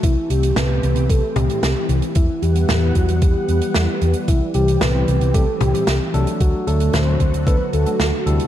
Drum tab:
HH |x-xxx-xxx-xxx-xx|x-xxx-xxx-xxx-xx|x-xxx-xxx-xxx-xx|x-xxx-xxx-xxx-xx|
SD |----o-------o---|----o-------o---|----o-------o---|----o-------o---|
T2 |----o-----o-----|----o-----------|----o-----o-----|----o-----------|
BD |o-------o-------|o-----o-o-------|o-------o-------|o-----o-o-------|